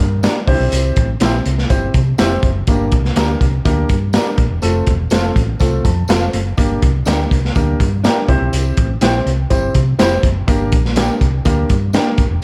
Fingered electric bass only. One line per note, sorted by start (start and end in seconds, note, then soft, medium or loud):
0.00 0.26 G2 medium
0.48 0.57 C2 medium
0.60 0.69 B1 medium
0.72 0.90 C2 medium
0.97 1.15 A1 medium
1.21 1.39 A#1 medium
1.46 1.64 C2 medium
1.70 1.88 G1 medium
1.94 2.12 C3 medium
2.19 2.37 F1 medium
2.43 2.61 F#1 medium
2.67 2.94 G1 loud
2.92 3.10 C2 medium
3.16 3.34 D2 medium
3.41 3.59 C2 medium
3.65 3.83 D2 loud
3.90 4.17 G2 medium
4.38 4.47 A#1 medium
4.51 4.60 E1 medium
4.63 4.81 F1 loud
4.87 5.05 E1 medium
5.11 5.29 F1 medium
5.36 5.54 A1 medium
5.60 5.78 C2 medium
5.85 6.03 F2 medium
6.09 6.27 F1 medium
6.34 6.52 F#1 medium
6.58 6.76 G1 loud
6.83 7.01 C2 medium
7.07 7.25 D2 medium
7.31 7.49 C2 medium
7.56 7.74 D2 loud
7.80 8.07 G2 medium
8.29 8.38 C2 medium
8.41 8.50 B1 medium
8.53 8.71 C2 loud
8.78 8.95 A1 medium
9.02 9.20 A#1 medium
9.26 9.44 C2 medium
9.51 9.69 G1 medium
9.75 9.93 C3 medium
9.99 10.17 F1 medium
10.23 10.41 F#1 medium
10.48 10.73 G1 loud
10.73 11.08 A#1 medium
11.21 11.39 C2 medium
11.46 11.63 D2 medium
11.70 11.97 G2 medium
12.18 12.27 G1 medium
12.31 12.40 E1 medium